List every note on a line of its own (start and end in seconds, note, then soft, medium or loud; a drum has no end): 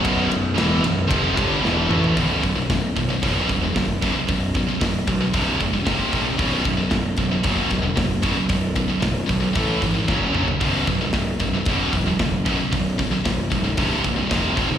0.02 0.29 B0 loud
0.02 0.28 B1 loud
0.02 0.28 F#2 loud
0.02 0.30 B2 loud
0.02 kick loud
0.02 ride loud
0.29 0.56 B0 medium
0.29 0.51 B1 medium
0.29 0.51 F#2 medium
0.29 ride medium
0.56 0.83 E1 loud
0.56 0.82 E2 medium
0.56 0.82 B2 loud
0.56 0.83 E3 loud
0.56 snare loud
0.56 ride loud
0.82 1.08 B0 medium
0.82 1.04 B1 medium
0.82 1.04 F#2 medium
0.82 ride medium
1.08 1.35 F1 medium
1.08 1.34 F2 medium
1.08 1.35 C3 medium
1.08 1.35 F3 loud
1.08 kick loud
1.08 ride loud
1.34 1.62 G1 medium
1.34 1.61 G2 medium
1.34 1.61 D3 medium
1.34 1.62 G3 loud
1.34 kick loud
1.34 ride medium
1.62 1.88 E1 loud
1.62 1.88 E2 medium
1.62 1.88 B2 loud
1.62 1.88 E3 loud
1.62 snare medium
1.89 2.14 A1 medium
1.89 2.15 A2 medium
1.89 2.15 E3 medium
1.89 2.15 A3 loud
1.89 mid tom medium
2.04 floor tom medium
2.16 2.34 B0 medium
2.16 2.41 B1 medium
2.16 2.41 F#2 medium
2.16 2.42 B2 medium
2.16 kick loud
2.16 open hi-hat medium
2.43 2.61 B0 medium
2.43 2.56 B1 medium
2.43 2.54 F#2 medium
2.43 kick medium
2.43 open hi-hat medium
2.56 2.69 B1 medium
2.56 2.69 F#2 medium
2.70 2.87 B0 medium
2.70 2.93 B1 medium
2.70 2.94 F#2 medium
2.70 kick loud
2.70 snare loud
2.70 open hi-hat medium
2.96 3.13 B0 medium
2.96 3.09 B1 medium
2.96 3.09 F#2 medium
2.96 kick medium
2.96 open hi-hat medium
3.10 3.22 B1 medium
3.10 3.23 F#2 medium
3.22 3.40 F#1 medium
3.22 3.47 B1 medium
3.22 3.48 F#2 medium
3.22 3.48 B2 loud
3.22 kick loud
3.22 open hi-hat medium
3.49 3.67 E1 medium
3.49 3.63 B1 medium
3.49 3.62 F#2 medium
3.49 kick medium
3.49 open hi-hat medium
3.64 3.76 B1 medium
3.64 3.76 F#2 medium
3.76 4.11 F#1 loud
3.76 4.00 B1 medium
3.76 4.00 F#2 medium
3.76 kick loud
3.76 snare loud
3.76 open hi-hat medium
4.02 4.13 B1 medium
4.02 4.14 F#2 medium
4.02 4.14 B2 loud
4.02 kick medium
4.02 open hi-hat medium
4.16 4.28 B1 medium
4.16 4.28 F#2 medium
4.28 4.64 B0 loud
4.28 4.52 B1 medium
4.28 4.52 F#2 medium
4.28 kick loud
4.28 open hi-hat medium
4.55 4.68 B1 medium
4.55 4.68 F#2 medium
4.55 kick medium
4.55 open hi-hat medium
4.69 4.81 B1 medium
4.69 4.81 F#2 medium
4.81 4.99 B0 medium
4.81 5.05 B1 medium
4.81 5.05 F#2 medium
4.81 kick loud
4.81 snare loud
4.81 open hi-hat medium
5.07 5.20 B1 medium
5.07 5.25 B1 medium
5.07 5.19 F#2 medium
5.07 kick medium
5.07 open hi-hat medium
5.21 5.33 B1 medium
5.21 5.33 F#2 medium
5.33 5.51 C1 medium
5.33 5.58 C2 medium
5.33 5.58 G2 loud
5.33 5.59 C3 loud
5.33 kick loud
5.33 open hi-hat medium
5.59 5.78 F#1 medium
5.59 5.72 C2 medium
5.59 5.72 G2 medium
5.59 kick medium
5.59 open hi-hat medium
5.73 5.85 C2 medium
5.73 5.86 G2 medium
5.86 6.04 F1 medium
5.86 6.10 F2 medium
5.86 6.11 C3 medium
5.86 6.11 F3 medium
5.86 kick loud
5.86 snare loud
5.86 open hi-hat medium
6.12 6.30 A#1 medium
6.12 6.24 F2 medium
6.12 6.23 C3 loud
6.12 6.24 F3 loud
6.12 kick medium
6.12 open hi-hat medium
6.24 6.37 F2 medium
6.24 6.37 C3 medium
6.37 6.57 B0 medium
6.37 6.63 B1 medium
6.37 6.63 F#2 medium
6.37 6.63 B2 medium
6.37 kick loud
6.37 open hi-hat medium
6.65 6.83 B0 medium
6.65 6.76 B1 medium
6.65 6.76 F#2 medium
6.65 kick medium
6.65 open hi-hat medium
6.77 6.89 B1 medium
6.77 6.89 F#2 medium
6.90 7.09 B0 medium
6.90 7.15 B1 medium
6.90 7.15 F#2 medium
6.90 kick loud
6.90 snare loud
6.90 open hi-hat medium
7.17 7.35 B0 medium
7.17 7.31 B1 medium
7.17 7.30 F#2 medium
7.17 kick medium
7.17 open hi-hat medium
7.32 7.42 B1 medium
7.32 7.43 F#2 medium
7.44 7.62 F#1 loud
7.44 7.69 B1 medium
7.44 7.69 F#2 medium
7.44 7.70 B2 medium
7.44 kick loud
7.44 open hi-hat medium
7.70 7.88 E1 medium
7.70 7.82 B1 medium
7.70 7.81 F#2 medium
7.70 kick medium
7.70 open hi-hat soft
7.82 7.94 B1 medium
7.82 7.95 F#2 medium
7.95 8.32 F#1 medium
7.95 8.20 B1 medium
7.95 8.20 F#2 medium
7.95 kick loud
7.95 snare loud
7.95 open hi-hat medium
8.22 8.35 B1 medium
8.22 8.34 F#2 medium
8.22 8.35 B2 loud
8.22 kick medium
8.22 open hi-hat medium
8.36 8.48 B1 medium
8.36 8.48 F#2 medium
8.49 8.85 B0 loud
8.49 8.73 B1 medium
8.49 8.73 F#2 medium
8.49 kick loud
8.49 open hi-hat medium
8.75 8.87 B1 medium
8.75 8.87 F#2 medium
8.75 kick medium
8.75 open hi-hat medium
8.88 8.99 B1 medium
8.88 8.99 F#2 medium
9.00 9.20 B0 medium
9.00 9.25 B1 medium
9.00 9.25 F#2 medium
9.00 kick loud
9.00 snare loud
9.00 open hi-hat medium
9.26 9.39 B1 medium
9.26 9.47 B1 medium
9.26 9.39 F#2 medium
9.26 kick medium
9.26 open hi-hat medium
9.40 9.53 B1 medium
9.40 9.54 F#2 medium
9.53 9.73 A1 medium
9.53 9.79 A2 medium
9.53 9.80 E3 medium
9.53 9.80 A3 loud
9.53 kick loud
9.53 open hi-hat medium
9.82 10.00 G#1 medium
9.82 9.93 A2 medium
9.82 9.93 E3 medium
9.82 kick medium
9.82 open hi-hat medium
9.94 10.07 A2 medium
9.94 10.08 E3 medium
10.08 10.26 F#1 medium
10.08 10.32 F#2 medium
10.08 10.33 C#3 medium
10.08 10.33 F#3 medium
10.08 kick loud
10.08 snare medium
10.33 10.52 A#1 medium
10.33 10.46 F#2 medium
10.33 10.46 C#3 medium
10.33 10.46 F#3 medium
10.33 mid tom medium
10.47 10.60 F#2 medium
10.47 10.61 C#3 medium
10.47 floor tom medium
10.60 10.78 B0 loud
10.60 10.86 B1 medium
10.60 10.86 F#2 loud
10.60 10.86 B2 loud
10.60 kick loud
10.60 open hi-hat medium
10.87 11.05 B0 medium
10.87 11.00 B1 medium
10.87 11.00 F#2 medium
10.87 kick medium
10.87 open hi-hat medium
11.01 11.13 B1 medium
11.01 11.13 F#2 medium
11.13 11.31 B0 medium
11.13 11.38 B1 medium
11.13 11.38 F#2 medium
11.13 kick loud
11.13 snare medium
11.13 open hi-hat medium
11.40 11.58 B0 medium
11.40 11.54 B1 medium
11.40 11.53 F#2 medium
11.40 kick medium
11.40 open hi-hat medium
11.54 11.67 B1 medium
11.54 11.67 F#2 medium
11.65 11.84 F#1 medium
11.65 11.92 B1 medium
11.65 11.92 F#2 medium
11.65 11.92 B2 loud
11.65 kick loud
11.65 open hi-hat medium
11.93 12.11 E1 medium
11.93 12.06 B1 medium
11.93 12.06 F#2 medium
11.93 kick medium
11.93 open hi-hat medium
12.07 12.18 B1 medium
12.07 12.18 F#2 medium
12.19 12.55 F#1 medium
12.19 12.43 B1 medium
12.19 12.43 F#2 medium
12.19 kick loud
12.19 snare loud
12.19 open hi-hat medium
12.46 12.57 B1 medium
12.46 12.57 F#2 medium
12.46 12.58 B2 loud
12.46 kick medium
12.46 open hi-hat medium
12.59 12.71 B1 medium
12.59 12.71 F#2 medium
12.72 13.07 B0 loud
12.72 12.96 B1 medium
12.72 12.96 F#2 medium
12.72 kick loud
12.72 open hi-hat medium
12.98 13.10 B1 medium
12.98 13.10 F#2 medium
12.98 kick medium
12.98 open hi-hat medium
13.11 13.23 B1 medium
13.11 13.24 F#2 medium
13.24 13.43 B0 medium
13.24 13.48 B1 medium
13.24 13.48 F#2 medium
13.24 kick loud
13.24 snare loud
13.24 open hi-hat medium
13.50 13.78 C#1 medium
13.50 13.63 B1 medium
13.50 13.63 F#2 medium
13.50 kick medium
13.50 open hi-hat medium
13.64 13.77 B1 medium
13.64 13.77 F#2 medium
13.77 13.95 C1 medium
13.77 14.02 C2 medium
13.77 14.02 G2 loud
13.77 14.02 C3 medium
13.77 kick loud
13.77 open hi-hat medium
14.03 14.22 C1 medium
14.03 14.15 C2 medium
14.03 14.15 G2 medium
14.03 kick medium
14.03 open hi-hat medium
14.16 14.29 C2 medium
14.16 14.29 G2 medium
14.29 14.48 F1 medium
14.29 14.54 F2 medium
14.29 14.55 C3 medium
14.29 14.55 F3 loud
14.29 kick loud
14.29 snare loud
14.29 open hi-hat medium
14.55 14.74 D#1 medium
14.55 14.67 F2 medium
14.55 14.67 C3 loud
14.55 14.68 F3 loud
14.55 kick medium
14.55 open hi-hat medium
14.69 14.78 F2 medium
14.69 14.78 C3 medium